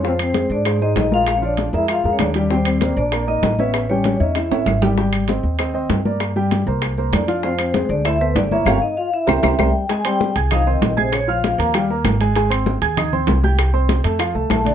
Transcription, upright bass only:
X:1
M:4/4
L:1/8
Q:1/4=195
K:Fdor
V:1 name="Upright bass" clef=bass
F,,3 A,,3 B,,,2- | B,,,3 F,,2 F,, E,,2- | E,,3 B,,,3 =A,,,2- | =A,,,3 =E,,2 A,,, _A,,,2- |
A,,,3 E,,3 G,,2- | G,,3 C,,3 F,,2- | F,,3 D,,3 G,,,2 | G,,, z3 C,, C,, C,, z |
[K:Bbdor] z3 C,,3 B,,,2- | B,,,3 E,,3 A,,,2- | A,,,3 E,,3 C,,2- | C,,3 F,,2 C,, B,,,2 |]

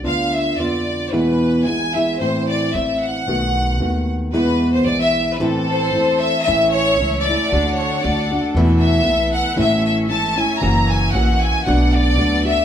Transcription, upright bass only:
X:1
M:2/4
L:1/8
Q:"Swing" 1/4=114
K:Am
V:1 name="Upright bass" clef=bass
D,,2 F,,2 | E,,2 B,,,2 | z2 A,,,2 | B,,,2 ^D,,2 |
E,,2 B,,,2 | A,,,2 E,,2 | [K:A] A,,,2 C,,2 | D,,2 D,,2 |
E,,2 B,,,2 | A,,,2 G,,,2 | F,,,2 ^A,,,2 | B,,,2 D,,2 |]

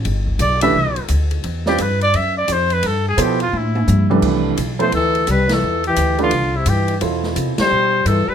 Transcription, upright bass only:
X:1
M:4/4
L:1/8
Q:"Swing" 1/4=172
K:C
V:1 name="Upright bass" clef=bass
G,,,2 B,,,2 (3C,, B,,, G,,, D,,2 | E,,2 G,,2 ^F,,2 =F,,2 | G,,2 B,,2 A,,2 G,,2 | C,,2 B,,,2 D,,2 C,,2 |
E,,2 D,,2 C,,2 G,,2 | E,,2 C, z B,,2 G,, z |]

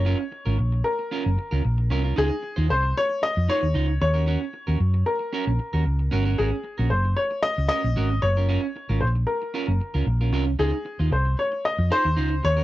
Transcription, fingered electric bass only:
X:1
M:4/4
L:1/16
Q:1/4=114
K:Db
V:1 name="Fingered electric bass" clef=bass
G,,, z2 A,,, B,,,2 z3 G,,, z D,, B,,,2 C,,2 | D,, z2 E,, C,,2 z3 F,, z E,, D,,2 E,,2- | E,, z2 E,, G,,2 z3 B,,, z E,, D,,2 =G,,,2 | A,,, z2 B,,, G,,,2 z3 D,, z B,,, A,,,2 G,,,2- |
G,,, z2 A,,, B,,,2 z3 G,,, z D,, B,,,2 C,,2 | D,, z2 E,, C,,2 z3 F,, z E,, D,,2 E,,2 |]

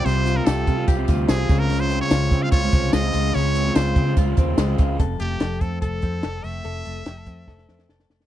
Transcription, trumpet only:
X:1
M:4/4
L:1/16
Q:1/4=146
K:F
V:1 name="Trumpet"
c3 B A4 z4 _A3 B- | B c2 _d4 f d4 _e4 | _d4 c4 z8 | z2 G4 A2 A6 e2- |
e12 z4 |]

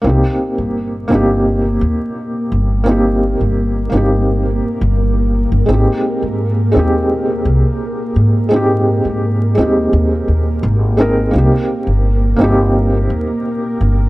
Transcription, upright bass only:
X:1
M:4/4
L:1/16
Q:1/4=85
K:Cm
V:1 name="Upright bass" clef=bass
C,, z2 G,,,3 G,,,4 E,, z3 G,,,2- | G,,,3 G,,,3 G,,,4 z G,,,4 G,,, | A,,, z2 A,,3 E,,4 C,, z3 A,,2- | A,,3 A,,3 E,,2 E,,2 E,,2 A,,,4 |
C,, z2 G,,,3 G,,,4 E,, z3 G,,,2 |]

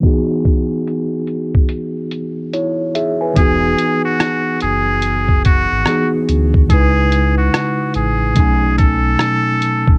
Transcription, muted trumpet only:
X:1
M:4/4
L:1/16
Q:"Swing 16ths" 1/4=72
K:E
V:1 name="Muted trumpet"
z16 | G3 F3 G4 F3 z3 | G3 F3 G4 A6 |]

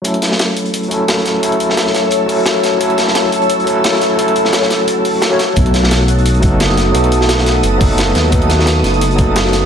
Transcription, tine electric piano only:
X:1
M:4/4
L:1/16
Q:"Swing 16ths" 1/4=174
K:F#dor
V:1 name="Tine electric piano"
[F,A,CEA]8- [F,A,CEA]2 [F,A,CEA]6 | [F,A,CEA]8- [F,A,CEA]2 [F,A,CEA]6 | [F,A,CEA]8- [F,A,CEA]2 [F,A,CEA]6 | [F,A,CEA]8- [F,A,CEA]2 z3 [F,A,CEc] z2 |
[F,A,B,DA]8- [F,A,B,DA]2 [F,A,B,DA]6 | [F,A,B,DA]8- [F,A,B,DA]2 [F,A,B,DA]6 | [F,A,B,DA]8- [F,A,B,DA]2 [F,A,B,DA]6 |]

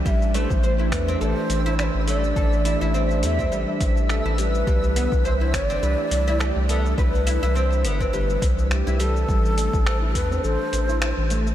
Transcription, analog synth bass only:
X:1
M:4/4
L:1/16
Q:"Swing 16ths" 1/4=104
K:Am
V:1 name="Analog synth bass" clef=bass
A,,,3 A,,,3 E,,2 A,,, z A,,,3 A,,,3 | A,,,3 A,,,3 E,,2 A,,, z A,,,3 A,,,3 | C,,3 C,,3 G,,,2 C,, z C,,3 C,,3 | C,,3 C,,3 G,,,2 G,,,2 C,,3 C,,3 |
A,,,3 A,,,3 E,,2 A,,, z A,,,3 A,,,3 |]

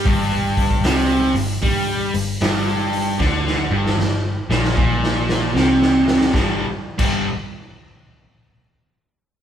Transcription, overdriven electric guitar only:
X:1
M:4/4
L:1/16
Q:"Swing" 1/4=76
K:C
V:1 name="Overdriven electric guitar" clef=bass
G,,4 C,2 G,,2 G,2 G,,2 G,,4 | D,2 G,,2 G,,2 _B,,2 B,,4 C,4 | [G,,D,G,] z2 [G,,D,G,]2 z8 z3 |]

